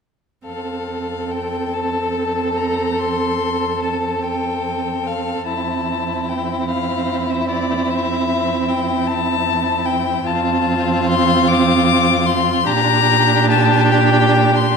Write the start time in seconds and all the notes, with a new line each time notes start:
0.46 F2 C4 A4 F5
1.31 G5
1.73 A5
2.57 A#5
2.99 C6
3.82 A5
4.23 G5
5.07 F5
5.46 F2 C4 E4 A5
6.29 G5
6.69 F5
7.30 E5
7.49 D5
7.90 E5
8.69 G5
9.07 A5
9.86 G5
10.25 F2 C4 F4 A5
11.09 C6
11.48 D6
12.26 C6
12.66 A#2 D4 G4 A#5
13.50 A5
13.92 G5
14.56 C6